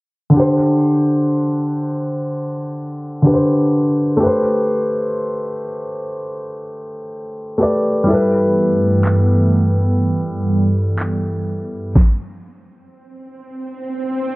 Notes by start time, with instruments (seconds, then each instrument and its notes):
0.30 felt piano D3 D4
0.36 felt piano G4 C5
3.22 felt piano D3 D4 G4
3.27 felt piano B4
3.34 felt piano C5
4.17 felt piano A3 G4
4.23 felt piano B4 C5
7.58 felt piano A3 G4 B4
7.63 felt piano D5
8.04 felt piano G3 E4
8.09 analog synth pad G2 E3 A3 B3, felt piano A4
8.14 felt piano B4
9.05 clap
10.02 analog synth pad G3
11.00 clap
11.96 kick, snare, swell